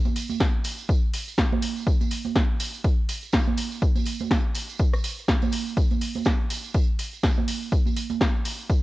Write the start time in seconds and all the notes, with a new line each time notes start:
0.05 tambourine, high conga
0.16 open hi-hat, tambourine
0.30 tambourine, high conga
0.40 kick, snare, tambourine
0.64 open hi-hat, tambourine
0.79 tambourine
0.89 kick, tambourine
1.14 open hi-hat, tambourine
1.28 tambourine
1.38 kick, snare, tambourine
1.52 high conga
1.62 open hi-hat, tambourine
1.76 tambourine
1.87 kick, tambourine
2.01 tambourine, high conga
2.11 open hi-hat, tambourine
2.25 tambourine, high conga
2.36 kick, snare, tambourine
2.60 open hi-hat, tambourine
2.74 tambourine
2.84 kick, tambourine
3.09 open hi-hat, tambourine
3.23 tambourine
3.32 kick, snare, tambourine
3.47 high conga
3.57 open hi-hat, tambourine
3.72 tambourine
3.82 kick, tambourine
3.95 tambourine, high conga
4.05 open hi-hat, tambourine
4.20 tambourine, high conga
4.31 kick, snare, tambourine
4.55 open hi-hat, tambourine
4.69 tambourine
4.79 kick, tambourine
4.93 cross-stick, tambourine
5.04 open hi-hat, tambourine
5.18 tambourine
5.28 kick, snare, tambourine
5.42 tambourine, high conga
5.52 open hi-hat, tambourine
5.67 tambourine
5.77 kick, tambourine
5.91 tambourine, high conga
6.01 open hi-hat, tambourine
6.15 tambourine, high conga
6.25 kick, snare, tambourine
6.50 open hi-hat, tambourine
6.64 tambourine
6.74 kick, tambourine
6.99 open hi-hat, tambourine
7.13 tambourine
7.23 kick, snare, tambourine
7.37 high conga
7.48 open hi-hat, tambourine
7.62 tambourine
7.72 kick, tambourine
7.86 tambourine, high conga
7.96 open hi-hat, tambourine
8.10 tambourine, high conga
8.21 kick, snare, tambourine
8.45 open hi-hat, tambourine
8.59 tambourine
8.70 kick, tambourine